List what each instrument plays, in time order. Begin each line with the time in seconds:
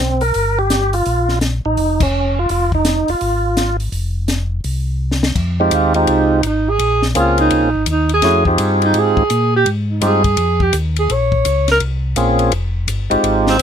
0.00 tonewheel organ B1 C4
0.21 tonewheel organ A#4, open hi-hat
0.34 tonewheel organ G1, open hi-hat
0.59 tonewheel organ G4
0.70 snare, closed hi-hat
0.93 tonewheel organ F4, open hi-hat
1.05 tonewheel organ A#1, open hi-hat
1.29 snare
1.41 snare, closed hi-hat
1.65 tonewheel organ A1 D#4
1.77 tonewheel organ F1, open hi-hat
2.00 tonewheel organ C#4, kick, crash
2.39 tonewheel organ F4
2.49 tonewheel organ F1 F4, open hi-hat
2.72 tonewheel organ D#4, kick
2.85 snare, closed hi-hat
3.08 tonewheel organ F1 F4, open hi-hat
3.21 tonewheel organ G#1, open hi-hat
3.57 snare, closed hi-hat
3.80 open hi-hat
3.92 tonewheel organ F1, open hi-hat
4.28 snare, closed hi-hat
4.64 tonewheel organ C2, open hi-hat
5.11 snare
5.23 snare
5.36 tonewheel organ F2, kick, crash
5.60 tonewheel organ G#3 C4 D#4 F4 G4
5.71 tonewheel organ D#2, alto saxophone F4, hi-hat pedal, ride
5.94 tonewheel organ G#3 C4 D#4 F4 G4, alto saxophone D#4, ride
6.07 tonewheel organ C2, ride
6.43 tonewheel organ G#1, alto saxophone D#4, hi-hat pedal, ride
6.69 alto saxophone G#4
6.79 tonewheel organ A#1, ride
7.02 snare
7.15 tonewheel organ C#2 A#3 C4 C#4 F4 G#4, alto saxophone F4, hi-hat pedal, ride
7.38 alto saxophone D#4, ride
7.50 tonewheel organ C2, ride
7.63 tonewheel organ A#1
7.75 tonewheel organ G#1
7.86 tonewheel organ D#2, hi-hat pedal, ride
7.91 alto saxophone D#4
8.09 ride
8.14 alto saxophone G#4
8.22 tonewheel organ F2 A3 C#4 E4 F#4 G#4, snare, ride
8.45 tonewheel organ C4 D#4 F4 G4 G#4, kick
8.58 tonewheel organ G2, hi-hat pedal, ride
8.82 alto saxophone D#4, ride
8.94 tonewheel organ G#2, ride
8.99 alto saxophone G#4
9.17 tonewheel organ G#2, kick
9.30 tonewheel organ A#2, hi-hat pedal, ride
9.56 alto saxophone G4
9.66 tonewheel organ G#2, ride
9.91 alto saxophone D#4
10.01 tonewheel organ G2 G#3 C4 D#4 F4 G4, alto saxophone G#4, hi-hat pedal, ride
10.24 kick, ride
10.37 tonewheel organ F2, ride
10.60 alto saxophone G4, kick
10.73 tonewheel organ D#2, hi-hat pedal, ride
10.96 alto saxophone G#4, ride
11.10 tonewheel organ A#1, alto saxophone C#5, ride
11.32 kick
11.45 tonewheel organ C#2, hi-hat pedal, ride
11.68 alto saxophone A#4, snare, ride
11.80 tonewheel organ C2, ride
12.16 tonewheel organ A#1 A#3 C4 C#4 F4 G#4, hi-hat pedal, ride
12.39 ride
12.52 tonewheel organ F1, ride
12.88 tonewheel organ G1, hi-hat pedal, ride
13.10 tonewheel organ G1 G#3 C4 D#4 F4 G4, ride
13.24 tonewheel organ G#1, ride
13.47 alto saxophone C4, snare